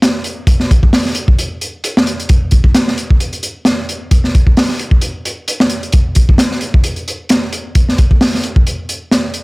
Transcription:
0.02 snare loud
0.02 closed hi-hat medium
0.24 closed hi-hat medium
0.47 kick loud
0.47 closed hi-hat medium
0.60 snare soft
0.71 kick loud
0.71 closed hi-hat medium
0.83 kick medium
0.93 snare loud
0.93 open hi-hat medium
1.05 snare soft
1.15 closed hi-hat medium
1.28 kick medium
1.39 closed hi-hat medium
1.61 closed hi-hat medium
1.84 closed hi-hat medium
1.97 snare loud
2.07 closed hi-hat medium
2.20 closed hi-hat soft
2.29 kick loud
2.29 closed hi-hat medium
2.51 kick medium
2.51 closed hi-hat medium
2.64 kick loud
2.75 snare loud
2.75 closed hi-hat medium
2.88 snare soft
2.98 closed hi-hat medium
3.10 kick medium
3.20 closed hi-hat medium
3.33 closed hi-hat soft
3.43 closed hi-hat medium
3.65 snare loud
3.65 closed hi-hat medium
3.89 closed hi-hat medium
4.11 kick loud
4.11 closed hi-hat medium
4.24 snare soft
4.35 kick loud
4.35 closed hi-hat medium
4.47 kick loud
4.57 snare loud
4.57 open hi-hat medium
4.68 snare soft
4.79 closed hi-hat medium
4.91 kick loud
5.01 closed hi-hat medium
5.25 closed hi-hat medium
5.48 closed hi-hat medium
5.60 snare loud
5.69 closed hi-hat medium
5.83 closed hi-hat soft
5.92 kick loud
5.92 closed hi-hat medium
6.15 kick medium
6.15 closed hi-hat medium
6.29 kick loud
6.38 snare loud
6.38 closed hi-hat loud
6.51 snare soft
6.61 closed hi-hat medium
6.74 kick loud
6.84 closed hi-hat medium
6.96 closed hi-hat soft
7.08 closed hi-hat medium
7.29 snare loud
7.29 closed hi-hat medium
7.53 closed hi-hat medium
7.75 kick loud
7.75 closed hi-hat medium
7.89 snare soft
7.98 kick loud
7.98 closed hi-hat medium
8.11 kick medium
8.21 snare loud
8.21 open hi-hat medium
8.35 snare soft
8.44 closed hi-hat medium
8.56 kick loud
8.67 closed hi-hat medium
8.89 closed hi-hat medium
9.11 snare loud
9.11 closed hi-hat medium
9.34 closed hi-hat medium

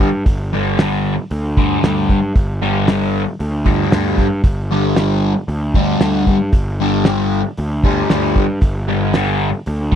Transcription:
0.00 0.22 G2 medium
0.00 kick medium
0.26 1.15 G1 medium
0.26 kick loud
0.26 open hi-hat medium
0.53 0.78 G2 medium
0.53 0.79 D3 medium
0.53 0.79 G3 medium
0.78 1.13 G2 medium
0.78 1.13 D3 medium
0.78 1.14 G3 medium
0.78 snare loud
0.78 open hi-hat medium
1.31 1.75 D2 medium
1.31 open hi-hat medium
1.57 1.82 G2 medium
1.57 1.83 D3 medium
1.57 1.83 G3 medium
1.57 kick medium
1.83 2.05 D2 medium
1.83 2.17 G2 medium
1.83 2.18 D3 medium
1.83 2.18 G3 medium
1.83 snare loud
1.83 open hi-hat medium
2.09 2.32 G2 medium
2.09 kick medium
2.35 3.25 G1 medium
2.35 kick loud
2.35 open hi-hat medium
2.62 2.87 G2 medium
2.62 2.88 D3 medium
2.62 2.88 G3 medium
2.87 3.22 G2 medium
2.87 3.22 D3 medium
2.87 3.23 G3 medium
2.87 snare loud
2.87 open hi-hat medium
3.01 snare soft
3.40 3.85 D2 medium
3.40 open hi-hat medium
3.66 3.91 G2 medium
3.66 3.92 D3 medium
3.66 3.92 G3 medium
3.66 kick medium
3.92 4.15 D2 medium
3.92 4.26 G2 medium
3.92 4.27 D3 medium
3.92 4.27 G3 medium
3.92 snare loud
3.92 open hi-hat medium
4.18 4.41 G2 medium
4.18 kick medium
4.44 5.33 G1 loud
4.44 kick loud
4.44 open hi-hat medium
4.71 4.97 G2 medium
4.71 4.97 D3 medium
4.71 4.97 G3 medium
4.96 5.31 G2 medium
4.96 5.32 D3 medium
4.96 5.32 G3 medium
4.96 snare loud
4.96 open hi-hat medium
5.48 5.93 D2 loud
5.48 open hi-hat medium
5.74 6.00 G2 medium
5.74 6.01 D3 medium
5.74 6.01 G3 medium
5.74 kick medium
6.00 6.23 D2 medium
6.00 6.35 G2 medium
6.00 6.36 D3 medium
6.00 6.36 G3 medium
6.00 snare loud
6.00 open hi-hat medium
6.27 6.49 G2 medium
6.27 kick medium
6.52 7.42 G1 medium
6.52 kick loud
6.52 open hi-hat medium
6.80 7.05 G2 medium
6.80 7.06 D3 medium
6.80 7.06 G3 medium
7.04 7.40 G2 medium
7.04 7.40 D3 medium
7.04 7.40 G3 medium
7.04 snare loud
7.04 open hi-hat medium
7.57 8.02 D2 medium
7.57 open hi-hat medium
7.84 8.10 G2 medium
7.84 8.10 D3 medium
7.84 8.10 G3 medium
7.84 kick medium
8.10 8.33 D2 medium
8.10 8.44 G2 medium
8.10 8.45 D3 medium
8.10 8.45 G3 medium
8.10 snare loud
8.10 open hi-hat medium
8.36 8.58 G2 medium
8.36 kick medium
8.61 9.51 G1 medium
8.61 kick loud
8.61 open hi-hat medium
8.88 9.14 G2 medium
8.88 9.14 D3 medium
8.88 9.14 G3 medium
9.13 9.48 G2 medium
9.13 9.49 D3 medium
9.13 9.49 G3 medium
9.13 snare loud
9.13 open hi-hat medium
9.28 snare soft
9.66 9.95 D2 medium
9.66 open hi-hat medium
9.92 9.95 G3 medium
9.92 kick medium

